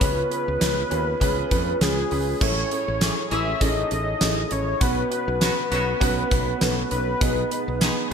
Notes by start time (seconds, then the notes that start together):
Already playing: B4
0.00 C#2 C#3 C#4 F4 G#4 B4, kick, closed hi-hat
0.30 C#4 F4 G#4 B4, closed hi-hat
0.48 C#2
0.60 C#2 C#4 F4 G#4 B4, snare, closed hi-hat
0.90 D#2 C#4 F4 G#4 B4, closed hi-hat
1.20 C#2 C#4 F4 G#4 B4, kick, closed hi-hat
1.51 F2 C#4 F4 G#4 B4, kick, closed hi-hat
1.80 C#2 C#4 F4 G#4 B4, snare, closed hi-hat
2.11 C#2 C#4 F4 G#4 B4, open hi-hat
2.40 A1 A2 C#4 E4 G#4 A4 C#5, kick, crash
2.70 C#4 E4 G#4 A4, closed hi-hat
2.88 A1
3.00 E3 G#3 C#4 E4 G#4 A4, snare, closed hi-hat, tambourine
3.30 A1 E3 G#3 C#4 E4 G#4 A4 E5, closed hi-hat
3.60 A1 C#4 E4 G#4 A4 D#5, kick, closed hi-hat
3.90 A1 C#4 E4 G#4 A4, closed hi-hat
4.20 A1 C#4 E4 G#4 A4, snare, closed hi-hat, tambourine
4.50 A1 C#4 E4 G#4 A4 C#5, closed hi-hat
4.80 B1 B2 B3 C#4 F#4 B4, kick, closed hi-hat
5.10 B3 C#4 F#4 B4, closed hi-hat
5.28 B1
5.40 C#3 F#3 B3 C#4 F#4 B4, snare, closed hi-hat, tambourine
5.70 B1 C#3 F#3 B3 C#4 F#4 B4, closed hi-hat
6.00 B1 B3 C#4 F#4 B4, kick, closed hi-hat
6.30 B1 B3 C#4 F#4 B4, kick, closed hi-hat
6.61 B1 B3 C#4 F#4 A4, snare, closed hi-hat, tambourine
6.91 B1 B3 C#4 F#4 B4, closed hi-hat
7.20 B1 B2 B3 D#4 G#4 B4, kick, closed hi-hat
7.50 B3 D#4 G#4 B4, closed hi-hat
7.68 B1
7.80 D#3 G#3 B3 D#4 G#4 B4, snare, closed hi-hat, tambourine